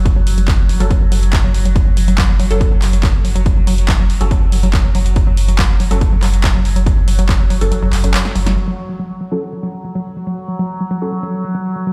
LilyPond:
<<
  \new Staff \with { instrumentName = "Synth stab" } { \time 4/4 \key fis \minor \tempo 4 = 141 r4. r16 <fis cis' a'>16 r2 | r4. r16 <fis cis' a'>16 r2 | r4. r16 <fis cis' a'>16 r2 | r4. r16 <fis cis' a'>16 r2 |
r4. r16 <fis cis' a'>16 r8. <fis cis' a'>16 r4 | r4. r16 <fis cis' a'>16 r2 | r4. r16 <fis cis' a'>16 r2 | }
  \new Staff \with { instrumentName = "Synth arpeggio sound" } { \clef bass \time 4/4 \key fis \minor fis16 fis16 r16 fis16 fis16 r16 fis16 fis16 r16 fis16 fis16 r16 fis16 fis16 r16 fis16 | fis16 r16 fis16 fis16 r16 fis16 fis16 r16 fis16 fis16 r16 fis16 fis16 r16 fis16 fis16 | r16 fis16 fis16 r16 fis16 fis16 r16 fis16 fis16 r16 fis16 fis16 r16 fis16 fis16 r16 | fis16 fis16 r16 fis16 fis16 r16 fis16 fis16 r16 fis16 fis16 r16 fis16 fis16 r16 fis16 |
fis16 r16 fis16 fis16 r16 fis16 fis16 r16 fis16 fis16 r16 fis16 fis16 r16 fis16 fis16 | fis16 fis16 r16 fis16 fis16 r16 fis16 fis16 r16 fis16 fis16 r16 fis16 fis16 r16 fis16 | fis16 r16 fis16 fis16 r16 fis16 fis16 r16 fis16 fis16 r16 fis16 fis16 r16 fis16 fis16 | }
  \new Staff \with { instrumentName = "Synth drone" } { \clef bass \time 4/4 \key fis \minor fis1~ | fis1~ | fis1~ | fis1~ |
fis1 | fis1~ | fis1 | }
  \new Staff \with { instrumentName = "Sub bass" } { \clef bass \time 4/4 \key fis \minor r16 fis,,16 fis,,16 fis,,16 r16 fis,,16 r16 fis,,16 r16 fis,,16 fis,,16 fis,,16 r8 fis,,16 fis,,16 | r16 fis,,16 fis,,16 fis,,16 r16 fis,,16 r16 fis,,16 r16 fis,,16 fis,,16 fis,,16 r8 fis,,16 fis,,16 | r16 fis,,16 fis,,16 fis,,16 r16 fis,,16 r16 fis,,16 r16 fis,,16 fis,,16 fis,,16 r8 fis,,16 fis,,16 | r16 fis,,16 fis,,16 fis,,16 r16 fis,,16 r16 fis,,16 r16 fis,,16 fis,,16 fis,,16 r8 fis,,16 fis,,16 |
r16 fis,,16 fis,,16 fis,,16 r16 fis,,16 r16 fis,,16 r16 fis,,16 fis,,16 fis,,16 r8 fis,,16 fis,,16 | r1 | r1 | }
  \new DrumStaff \with { instrumentName = "Drums" } \drummode { \time 4/4 <hh bd>8 hho16 hh16 <hc hh bd>8 hho16 hh16 <hh bd>8 hho16 hh16 <hc hh bd>8 hho16 hh16 | <hh bd>8 hho16 hh16 <hc hh bd>8 hho16 hh16 <hh bd>8 <hc hho>16 hh16 <hc hh bd>8 hho16 hh16 | <hh bd>8 hho16 hh16 <hc hh bd>8 hho16 hh16 <hh bd>8 hho16 hh16 <hc hh bd>8 hho16 hh16 | <hh bd>8 hho16 hh16 <hc hh bd>8 hho16 hh16 <hh bd>8 <hc hho>16 hh16 <hc hh bd>8 hho16 hh16 |
<hh bd>8 hho16 hh16 <hc hh bd>8 hho16 hh16 hh8 <hc hho>16 hh16 <hc hh>16 sn16 hho16 <hh sn>16 | r4 r4 r4 r4 | r4 r4 r4 r4 | }
>>